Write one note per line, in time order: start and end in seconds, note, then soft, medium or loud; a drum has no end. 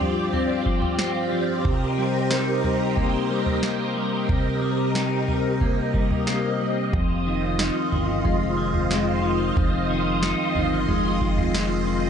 0.00 1.65 G2 medium
0.00 0.65 F3 medium
0.00 0.33 C4 medium
0.00 6.89 C4 medium
0.00 1.72 D4 medium
0.00 1.62 F4 medium
0.00 6.89 G4 medium
0.00 1.62 D5 medium
0.00 floor tom medium
0.33 0.99 C4 medium
0.33 floor tom medium
0.66 1.31 F3 medium
0.66 kick medium
0.82 floor tom medium
0.99 2.97 C4 medium
0.99 snare loud
1.32 1.72 F3 soft
1.64 4.28 C3 medium
1.64 6.89 A#4 medium
1.64 12.10 D#5 medium
1.64 kick loud
1.64 floor tom medium
1.98 2.63 G3 soft
2.31 4.95 D#4 medium
2.31 snare loud
2.64 3.29 G3 medium
2.64 floor tom soft
2.97 3.62 A#3 medium
2.97 kick medium
2.97 floor tom soft
3.30 3.95 G3 soft
3.46 floor tom medium
3.63 5.60 A#3 medium
3.63 snare loud
3.96 4.60 G3 soft
4.29 6.93 C3 medium
4.29 kick loud
4.29 floor tom loud
4.62 5.27 G3 soft
4.95 7.59 D#4 medium
4.95 snare loud
5.28 5.93 G3 soft
5.28 floor tom medium
5.61 6.26 A#3 medium
5.61 kick medium
5.61 floor tom medium
5.94 6.59 G3 medium
5.94 kick medium
6.11 floor tom medium
6.27 6.99 A#3 medium
6.27 snare medium
6.60 6.99 G3 soft
6.93 7.71 F1 medium
6.93 9.55 F2 medium
6.93 12.10 C4 medium
6.93 12.10 F4 medium
6.93 12.10 C5 medium
6.93 kick loud
6.93 floor tom loud
7.26 7.92 D#3 medium
7.59 10.22 D#4 medium
7.59 snare loud
7.92 8.23 G1 medium
7.92 8.57 D#3 soft
7.92 floor tom medium
8.25 9.52 F1 loud
8.25 8.90 G#3 medium
8.25 kick medium
8.25 floor tom medium
8.58 9.23 D#3 soft
8.74 floor tom medium
8.90 10.87 G#3 medium
8.90 snare loud
9.23 9.89 D#3 soft
9.56 10.35 F1 medium
9.56 12.10 F2 medium
9.56 kick loud
9.56 floor tom loud
9.90 10.56 D#3 soft
10.22 12.10 D#4 medium
10.22 snare loud
10.55 10.87 G1 medium
10.55 11.21 D#3 medium
10.55 floor tom medium
10.88 12.10 F1 loud
10.88 11.54 G#3 medium
10.88 floor tom medium
11.21 11.87 D#3 medium
11.21 kick medium
11.38 floor tom medium
11.55 12.10 G#3 medium
11.55 snare medium
11.87 12.10 D#3 soft